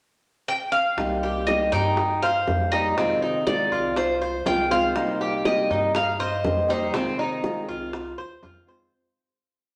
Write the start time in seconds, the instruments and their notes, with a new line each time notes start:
0.48 cuban tres G5
0.72 cuban tres F5
0.97 upright bass C2, nylon-string guitar C3 G3 A#3 D#4 G4, high bongo
1.23 cuban tres G4, high bongo
1.47 nylon-string guitar C3 G3 A#3 D#4 G4, cuban tres D#5, high bongo
1.72 upright bass G2, cuban tres D#4 G5
1.97 muted nylon-string guitar stroke, high bongo
2.22 cuban tres C5 F5, high bongo
2.47 upright bass F2, nylon-string guitar G3 A#3 D#4 G4, high bongo, low bongo
2.72 nylon-string guitar G3 A#3 D#4 G4, cuban tres D#4 D#5, high bongo
2.96 nylon-string guitar C3 D#3 G#3 C4 F4, cuban tres C4, high bongo
3.22 cuban tres D#4, high bongo
3.46 nylon-string guitar C3 D#3 G#3 C4 F4, cuban tres D5, high bongo
3.71 upright bass C2, cuban tres F4
3.95 cuban tres C5, muted nylon-string guitar stroke, high bongo
4.22 cuban tres C5, high bongo
4.45 upright bass C2, nylon-string guitar D#3 G#3 C4 F4, cuban tres F4 G5, high bongo, low bongo
4.70 nylon-string guitar D#3 G#3 C4 F4, cuban tres C5 F5, high bongo
4.95 nylon-string guitar C3 G3 A#3 D#4 G4, high bongo
5.21 cuban tres G4, high bongo
5.45 nylon-string guitar C3 G3 A#3 D#4 G4, cuban tres D#5, high bongo
5.70 upright bass G2, cuban tres D#4
5.95 cuban tres F5, muted nylon-string guitar stroke, high bongo
6.19 cuban tres C5 D#5, high bongo
6.43 upright bass F2, nylon-string guitar G3 A#3 D#4 G4, high bongo, low bongo
6.68 nylon-string guitar G3 A#3 D#4 G4, cuban tres D#4 C5, high bongo
6.93 nylon-string guitar C3 D#3 G#3 C4 F4, cuban tres C4, high bongo
7.19 cuban tres D#4, high bongo
7.43 nylon-string guitar C3 D#3 G#3 C4 F4, high bongo
7.68 upright bass C2, cuban tres F4
7.93 muted nylon-string guitar stroke, high bongo
8.18 upright bass D#2, cuban tres C5, high bongo
8.43 upright bass F2, nylon-string guitar D#3 G#3 C4 F4, cuban tres F4, high bongo, low bongo
8.67 nylon-string guitar D#3 G#3 C4 F4, cuban tres C5, high bongo